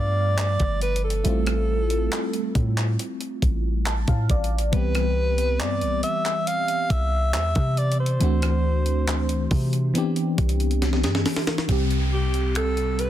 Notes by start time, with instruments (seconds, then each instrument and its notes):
Already playing: 808-style bass G2, fm electric piano F3 G3 A3 B3 F4, alto saxophone D5
0.38 alto saxophone D5, clap, closed hi-hat
0.60 808-style bass G1, kick, closed hi-hat
0.81 alto saxophone B4, closed hi-hat
0.96 closed hi-hat
1.04 alto saxophone A4
1.10 closed hi-hat
1.24 808-style bass A1, fm electric piano G3 A3 C4 E4, closed hi-hat
1.28 fm electric piano F4
1.47 cross-stick, closed hi-hat
1.90 closed hi-hat
2.12 clap, closed hi-hat
2.33 closed hi-hat
2.55 808-style bass A2, kick, closed hi-hat
2.77 clap, closed hi-hat
2.99 closed hi-hat
3.21 closed hi-hat
3.42 808-style bass A1, kick, closed hi-hat
3.86 fm electric piano A5, clap, closed hi-hat
4.08 808-style bass A2, fm electric piano F5, kick, closed hi-hat
4.29 808-style bass A1, fm electric piano D5, kick, closed hi-hat
4.44 closed hi-hat
4.58 closed hi-hat
4.72 808-style bass C2, fm electric piano E3 G3 B3 C4, alto saxophone B4, kick, closed hi-hat
4.76 fm electric piano G4
4.95 cross-stick, closed hi-hat
5.38 closed hi-hat
5.60 808-style bass G2, alto saxophone D5, clap, closed hi-hat
5.81 808-style bass C2, closed hi-hat
6.03 alto saxophone E5, closed hi-hat
6.25 clap, closed hi-hat
6.47 alto saxophone F5, closed hi-hat
6.68 closed hi-hat
6.90 808-style bass C2, alto saxophone E5, kick, closed hi-hat
7.34 808-style bass E2, alto saxophone E5, clap, closed hi-hat
7.55 808-style bass C3, kick, closed hi-hat
7.77 alto saxophone D5, closed hi-hat
7.92 closed hi-hat
8.00 alto saxophone C5
8.06 closed hi-hat
8.19 808-style bass D2, fm electric piano E3 A3 C4 D4, closed hi-hat
8.24 fm electric piano F#4
8.42 cross-stick, closed hi-hat
8.86 closed hi-hat
9.07 clap, closed hi-hat
9.29 closed hi-hat
9.51 808-style bass C3, kick, open hi-hat
9.73 closed hi-hat
9.94 fm electric piano E3 B3 C4 D4, closed hi-hat
9.98 fm electric piano G4
10.16 closed hi-hat
10.38 808-style bass C2, kick, closed hi-hat
10.49 closed hi-hat
10.60 closed hi-hat
10.71 closed hi-hat
10.82 snare, closed hi-hat
10.93 snare
11.04 808-style bass G2, snare, closed hi-hat
11.15 snare
11.26 snare, open hi-hat
11.36 snare
11.47 snare
11.58 snare
11.68 808-style bass C2, fm electric piano C3 G3 C4, kick, closed hi-hat, downlifter
11.72 fm electric piano G4
11.90 closed hi-hat
12.13 alto saxophone G4
12.34 closed hi-hat
12.55 alto saxophone A4, finger snap, closed hi-hat
12.77 closed hi-hat
12.99 alto saxophone B4, closed hi-hat